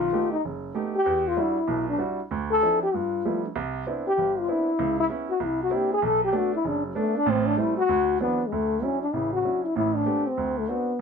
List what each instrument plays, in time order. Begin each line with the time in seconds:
Already playing: trombone F4
0.13 grand piano A3 B3 D#4 G4
0.32 trombone D#4
0.45 grand piano F#1
0.75 grand piano A3 B3 D#4 G4
0.96 trombone G4
1.06 grand piano E2
1.28 trombone F4
1.37 grand piano G3 D4 E4 F#4
1.41 trombone E4
1.67 grand piano B1 B2
1.89 trombone D4
1.98 grand piano G3 D4 E4 F#4
2.31 grand piano D2
2.51 trombone A4
2.62 grand piano F3 C4 D4 E4
2.83 trombone G4
2.94 grand piano G2, trombone F4
3.25 grand piano F3 G3 A3 B3 E4
3.45 trombone D4
3.56 grand piano C2
3.86 grand piano B3 C4 D4 E4
4.07 trombone G4
4.18 grand piano G1
4.39 trombone F4
4.48 grand piano B3 C4 D4 E4, trombone E4
4.79 grand piano C#2
5.00 trombone E4
5.10 grand piano B3 C#4 E4
5.30 trombone F#4
5.40 grand piano C2
5.45 trombone E4
5.63 trombone F#4
5.70 grand piano A#3 C4 D4 E4
5.76 trombone G4
5.93 trombone G#4
6.02 grand piano B1, trombone A4
6.25 trombone G4
6.33 grand piano A3 B3 D4
6.37 trombone F#4
6.55 trombone E4
6.64 grand piano F#1, trombone D4
6.86 trombone F#3
6.95 grand piano A3 B3 D4, trombone A3
7.16 trombone D4
7.26 grand piano A1 A2, trombone C4
7.46 trombone D4
7.57 grand piano G3 A3 C4, trombone E4
7.77 trombone F#4
7.89 grand piano D2
8.20 grand piano E3 F#3 B3 C4 D4, trombone B3
8.47 trombone G#3
8.52 grand piano D2, trombone A3
8.82 grand piano F#3 C#4 D4 E4, trombone C#4
9.02 trombone D4
9.13 grand piano A1 C#3, trombone E4
9.33 trombone F#4
9.45 grand piano F#3 C#4 D4 E4
9.65 trombone E4
9.76 grand piano A1 A2, trombone E4
9.96 trombone D4
10.06 grand piano A3 B3 C4 G4
10.28 trombone C4
10.37 grand piano D2
10.58 trombone A3
10.68 trombone B3, grand piano C4 D4 F#4